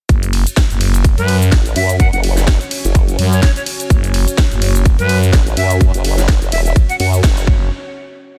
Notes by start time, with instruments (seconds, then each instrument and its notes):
0.09 fm bass F#1, analog synth pad C#4 F#4 C#5, kick, closed hi-hat, shaker
0.23 closed hi-hat, shaker
0.33 open hi-hat, ride
0.47 closed hi-hat, shaker
0.57 kick, snare, closed hi-hat, shaker
0.70 fm bass F#1, closed hi-hat, shaker
0.81 open hi-hat, ride
0.94 closed hi-hat, shaker
1.04 kick, closed hi-hat, shaker
1.18 fm bass F#2, flute B4, closed hi-hat, shaker
1.28 open hi-hat, ride
1.42 shaker
1.52 wobble bass A1, kick, snare, closed hi-hat, shaker
1.66 closed hi-hat, shaker
1.76 wobble bass F#2, flute E5, open hi-hat, ride
1.89 closed hi-hat, shaker
2.00 flute F#5, kick, closed hi-hat, shaker
2.13 wobble bass F#1, flute F#5, closed hi-hat, shaker
2.24 open hi-hat, ride
2.37 snare, closed hi-hat, shaker
2.47 kick, snare, closed hi-hat, shaker
2.61 closed hi-hat, shaker
2.71 open hi-hat, ride
2.85 wobble bass F#1, closed hi-hat, shaker
2.95 kick, closed hi-hat, shaker
3.08 closed hi-hat, shaker
3.19 fm bass F#2, open hi-hat, ride
3.32 flute C#5, shaker
3.43 flute C#5, kick, snare, closed hi-hat, shaker
3.56 flute C#5, closed hi-hat, shaker
3.66 open hi-hat, ride
3.80 closed hi-hat, shaker
3.90 fm bass F#1, kick, closed hi-hat, shaker
4.04 closed hi-hat, shaker
4.14 open hi-hat, ride
4.28 closed hi-hat, shaker
4.38 kick, snare, closed hi-hat, shaker
4.51 fm bass F#1, closed hi-hat, shaker
4.62 open hi-hat, ride
4.75 closed hi-hat, shaker
4.86 kick, closed hi-hat, shaker
4.99 fm bass F#2, flute B4, closed hi-hat, shaker
5.09 open hi-hat, ride
5.23 shaker
5.33 wobble bass A1, kick, snare, closed hi-hat, shaker
5.47 closed hi-hat, shaker
5.57 wobble bass F#2, flute E5, open hi-hat, ride
5.70 closed hi-hat, shaker
5.81 kick, closed hi-hat, shaker
5.94 wobble bass F#1, closed hi-hat, shaker
6.05 open hi-hat, ride
6.18 snare, closed hi-hat, shaker
6.28 kick, snare, closed hi-hat, shaker
6.42 wobble bass F#1, closed hi-hat, shaker
6.52 wobble bass E1, flute E5, open hi-hat, ride
6.66 flute E5, closed hi-hat, shaker
6.76 kick, closed hi-hat, shaker
6.89 flute F#5, closed hi-hat, shaker
7.00 wobble bass F#2, flute F#5, open hi-hat, ride
7.14 shaker
7.24 wobble bass F#1, kick, snare, closed hi-hat, shaker
7.37 closed hi-hat, shaker
7.47 fm bass F#1, kick